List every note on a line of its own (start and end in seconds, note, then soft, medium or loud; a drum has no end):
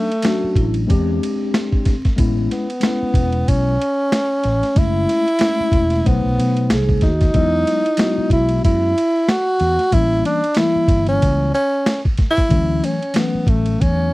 0.00 0.86 A3 medium
0.12 ride soft
0.22 0.89 F#3 medium
0.22 0.89 A3 medium
0.22 0.90 C#4 medium
0.22 0.55 F#4 loud
0.22 snare loud
0.22 hi-hat pedal medium
0.22 ride medium
0.26 0.88 D4 medium
0.44 muted fretless electric bass stroke soft
0.56 0.85 A1 medium
0.56 0.71 E4 loud
0.56 kick medium
0.56 ride soft
0.74 ride soft
0.87 1.18 E2 medium
0.87 1.93 G#3 medium
0.87 1.93 C4 medium
0.87 1.94 D4 medium
0.87 1.50 D4 medium
0.87 1.94 G4 loud
0.87 kick medium
0.87 ride medium
1.23 ride medium
1.54 2.01 C4 medium
1.54 snare loud
1.54 hi-hat pedal medium
1.54 ride medium
1.72 kick medium
1.85 kick medium
1.85 snare soft
1.85 ride soft
2.05 kick medium
2.05 snare soft
2.05 ride soft
2.16 2.47 A1 medium
2.16 2.65 G#3 medium
2.16 2.66 B3 medium
2.16 2.66 C#4 medium
2.16 2.67 E4 medium
2.16 kick loud
2.16 ride medium
2.51 3.50 B3 medium
2.51 snare soft
2.51 ride medium
2.70 ride soft
2.80 3.74 G#3 medium
2.80 3.75 B3 medium
2.80 3.75 C#4 medium
2.80 3.76 E4 medium
2.80 snare loud
2.80 hi-hat pedal medium
2.80 ride medium
3.02 muted fretless electric bass stroke soft
3.14 3.43 E1 medium
3.14 kick medium
3.14 ride soft
3.32 ride soft
3.48 3.76 B1 medium
3.48 4.80 C#4 medium
3.48 kick medium
3.48 ride medium
3.82 ride medium
4.12 snare loud
4.12 hi-hat pedal medium
4.12 ride medium
4.43 4.61 A1 medium
4.43 snare soft
4.43 ride medium
4.63 snare soft
4.63 ride soft
4.75 5.05 F#1 medium
4.75 5.24 G#3 medium
4.75 5.24 A3 medium
4.75 5.25 C#4 medium
4.75 6.08 E4 loud
4.75 5.25 E4 medium
4.75 kick loud
4.75 ride medium
5.09 snare soft
5.09 ride medium
5.28 ride soft
5.39 6.05 G#3 medium
5.39 6.04 A3 medium
5.39 6.06 C#4 medium
5.39 6.06 E4 medium
5.39 snare loud
5.39 hi-hat pedal medium
5.39 ride medium
5.60 muted fretless electric bass stroke soft
5.72 6.01 E1 medium
5.72 kick medium
5.72 ride medium
5.90 snare soft
5.90 ride soft
6.04 6.23 B1 loud
6.04 7.09 F#3 medium
6.04 7.10 A3 medium
6.04 6.77 B3 medium
6.04 7.11 D#4 medium
6.04 7.10 C5 medium
6.04 kick medium
6.04 ride medium
6.25 6.36 B1 medium
6.38 6.72 B2 medium
6.38 ride medium
6.57 ride soft
6.70 6.99 C2 medium
6.70 7.00 G#4 medium
6.70 snare loud
6.70 hi-hat pedal medium
6.70 ride medium
6.89 kick medium
7.01 7.31 D#2 medium
7.01 8.28 D#4 loud
7.01 7.32 F#4 medium
7.01 kick medium
7.01 snare soft
7.01 ride medium
7.21 kick medium
7.21 snare soft
7.21 ride soft
7.33 7.63 E2 medium
7.33 7.82 F#3 medium
7.33 7.82 G#3 medium
7.33 7.83 B3 medium
7.33 7.98 E4 medium
7.33 7.83 D#5 medium
7.33 kick loud
7.33 ride medium
7.67 snare soft
7.67 ride medium
7.86 ride soft
7.97 8.91 F#3 medium
7.97 8.91 G#3 medium
7.97 8.92 B3 medium
7.97 9.24 E4 medium
7.97 8.92 F#4 medium
7.97 snare loud
7.97 hi-hat pedal medium
7.97 ride medium
8.18 muted fretless electric bass stroke soft
8.30 8.59 B1 medium
8.30 8.62 E4 medium
8.30 kick medium
8.30 ride soft
8.49 ride soft
8.65 8.93 F#2 medium
8.65 9.30 E4 medium
8.65 kick medium
8.65 ride medium
8.98 ride medium
9.29 9.95 F#4 loud
9.29 snare loud
9.29 hi-hat pedal medium
9.29 ride medium
9.60 9.77 E2 medium
9.60 snare soft
9.60 ride soft
9.79 snare soft
9.79 ride soft
9.91 10.21 A1 medium
9.91 10.40 E3 medium
9.91 10.40 G3 medium
9.91 10.41 A#3 medium
9.91 10.42 C#4 medium
9.91 10.25 E4 loud
9.91 kick loud
9.91 ride medium
10.25 10.59 D4 medium
10.25 snare soft
10.25 ride medium
10.44 ride soft
10.55 11.49 E3 medium
10.55 11.49 G3 medium
10.55 11.50 A#3 medium
10.55 11.08 E4 loud
10.55 snare loud
10.55 hi-hat pedal medium
10.55 ride medium
10.59 11.51 E4 medium
10.76 muted fretless electric bass stroke soft
10.88 11.17 G1 medium
10.88 kick medium
10.88 ride medium
11.07 11.51 C#4 medium
11.07 ride soft
11.22 11.51 C#2 medium
11.22 kick medium
11.22 ride medium
11.54 12.01 C#4 loud
11.54 ride medium
11.86 snare loud
11.86 hi-hat pedal soft
11.86 ride medium
12.05 kick medium
12.17 kick medium
12.17 snare soft
12.17 ride medium
12.31 12.86 E4 loud
12.37 kick medium
12.37 snare soft
12.37 ride soft
12.49 12.79 D2 loud
12.49 12.98 E3 medium
12.49 12.98 F#3 medium
12.49 12.99 A3 medium
12.49 13.00 C#4 medium
12.49 kick loud
12.49 ride medium
12.84 13.19 C#4 medium
12.84 snare soft
12.84 ride medium
13.03 ride soft
13.14 14.07 E3 medium
13.14 14.08 F#3 medium
13.14 14.08 A3 medium
13.14 14.09 C#4 medium
13.14 snare loud
13.14 hi-hat pedal medium
13.14 ride medium
13.18 13.50 B3 medium
13.35 muted fretless electric bass stroke soft
13.47 13.76 A1 loud
13.47 13.83 A3 medium
13.47 kick medium
13.47 ride soft
13.66 ride soft
13.81 14.09 E2 medium
13.81 14.13 C#4 medium
13.81 kick medium
13.81 ride medium